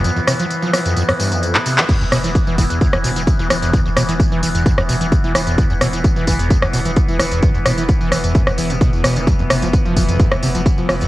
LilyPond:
<<
  \new Staff \with { instrumentName = "Synth drone" } { \clef bass \time 4/4 \key f \lydian \tempo 4 = 130 <e b>1 | <e b>1~ | <e b>1~ | <e b>1~ |
<e b>1~ | <e b>1 | }
  \new Staff \with { instrumentName = "Acid bass" } { \clef bass \time 4/4 \key f \lydian f,16 f,16 c16 f16 r16 f16 f16 f,16 f,16 f,16 g,16 f,8 c16 c16 f16 | e,16 e,16 b,16 e16 r16 e16 e16 e,16 e,16 e,16 b,16 e16 r16 e16 e16 e,16 | e,16 e,16 b,16 e16 r16 e16 e16 e,16 r16 e,16 b,16 e16 r16 e16 e16 e,16 | e,16 e,16 b,16 e16 r16 e16 e16 e,16 e,16 e,16 b,16 e16 r16 e16 e16 e,16 |
e,16 e,16 b,16 e16 r16 e16 e16 e,16 e,16 e,16 e16 b,16 b,16 e,16 b,16 e16 | f,16 f,16 c16 f16 r16 f16 f16 f,16 f,16 f,16 c16 f16 r16 f16 f16 f,16 | }
  \new Staff \with { instrumentName = "Sub bass" } { \clef bass \time 4/4 \key f \lydian r1 | r16 e,,16 e,,16 e,,16 r16 e,,16 e,,16 e,,16 r16 e,,16 e,,16 e,,16 r16 e,,16 e,,16 e,,16 | r16 e,,16 e,,16 e,,16 r16 e,,16 e,,16 e,,16 r16 e,,16 e,,16 e,,16 r16 e,,16 e,,16 e,,16 | r16 e,,16 e,,16 e,,16 r16 e,,16 e,,16 e,,16 r16 e,,16 e,,16 e,,16 r16 e,,16 e,,16 e,,16 |
r16 e,,16 e,,16 e,,16 r16 e,,16 e,,16 e,,16 r16 e,,16 e,,16 e,,16 r16 e,,16 e,,16 e,,16 | r16 f,,16 f,,16 f,,16 r16 f,,16 f,,16 f,,16 r16 f,,16 f,,16 f,,16 r16 f,,16 f,,16 f,,16 | }
  \new DrumStaff \with { instrumentName = "Drums" } \drummode { \time 4/4 <hh tamb>16 tamb16 <hho ss tamb>16 <hh tamb>16 <hh tamb>16 tamb16 <hho ss tamb>16 <hh tamb>16 <hh tamb>16 <hho ss tamb>16 <hho tamb>16 <hh tamb>16 <hh tamb>16 <hc tamb>16 <hho tamb>16 <hc hh tamb>16 | <cymc hh bd tamb>16 tamb16 <hho ss tamb>16 <hh tamb>16 <hh bd tamb>16 tamb16 <hho bd tamb>16 <hh tamb>16 <hh bd tamb>16 <ss tamb>16 <hho tamb>16 <hh tamb>16 <hh bd tamb>16 tamb16 <hho ss tamb>16 <hh tamb>16 | <hh bd tamb>16 tamb16 <hho ss tamb>16 <hh tamb>16 <hh bd tamb>16 tamb16 <hho tamb>16 <hh tamb>16 <hh bd tamb>16 <ss tamb>16 <hho tamb>16 <hh tamb>16 <hh bd tamb>16 tamb16 <hho ss tamb>16 <hh tamb>16 | <hh bd tamb>16 tamb16 <hho ss tamb>16 <hh tamb>16 <hh bd tamb>16 tamb16 <hho bd tamb>16 <hh tamb>16 <hh bd tamb>16 <ss tamb>16 <hho tamb>16 <hh tamb>16 <hh bd tamb>16 tamb16 <hho ss tamb>16 <hh tamb>16 |
<hh bd tamb>16 tamb16 <hho ss tamb>16 <hh tamb>16 <hh bd tamb>16 tamb16 <hho ss tamb>16 <hh tamb>16 <hh bd tamb>16 <ss tamb>16 <hho tamb>16 <hh tamb>16 <hh bd tamb>16 tamb16 <hho ss tamb>16 <hh tamb>16 | <hh bd tamb>16 tamb16 <hho ss tamb>16 <hh tamb>16 <hh bd tamb>16 tamb16 <hho bd tamb>16 <hh tamb>16 <hh bd tamb>16 <ss tamb>16 <hho tamb>16 <hh tamb>16 <hh bd tamb>16 tamb16 <hho ss tamb>16 <hh tamb>16 | }
>>